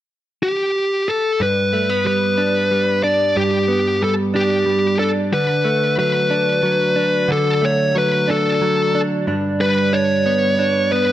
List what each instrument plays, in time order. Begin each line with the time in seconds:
0.43 lead electric guitar G4
1.08 lead electric guitar A4
1.40 clean electric guitar G2, lead electric guitar B4
1.73 clean electric guitar A3
1.89 clean electric guitar B3
2.05 clean electric guitar G3, lead electric guitar B4
2.38 clean electric guitar D4
2.71 clean electric guitar G3
3.04 clean electric guitar D4, lead electric guitar D5
3.37 clean electric guitar G2, lead electric guitar G4
3.68 clean electric guitar B3
4.02 clean electric guitar G3, lead electric guitar A4
4.34 clean electric guitar D4, lead electric guitar G4
4.66 clean electric guitar G3
4.99 clean electric guitar D4, lead electric guitar A4
5.33 clean electric guitar D3, lead electric guitar B4
5.65 clean electric guitar A3
5.97 clean electric guitar F#3, lead electric guitar B4
6.30 clean electric guitar D4
6.63 clean electric guitar F#3
6.96 clean electric guitar D4
7.28 clean electric guitar D3, lead electric guitar A4
7.62 clean electric guitar A3, lead electric guitar C#5
7.95 clean electric guitar F#3, lead electric guitar B4
8.28 clean electric guitar D4, lead electric guitar A4
8.61 clean electric guitar F#3
8.95 clean electric guitar D4
9.27 clean electric guitar G2 D4
9.60 clean electric guitar G3, lead electric guitar B4
9.93 clean electric guitar D4, lead electric guitar C#5
10.26 clean electric guitar B3
10.59 clean electric guitar D4
10.92 clean electric guitar B3, lead electric guitar B4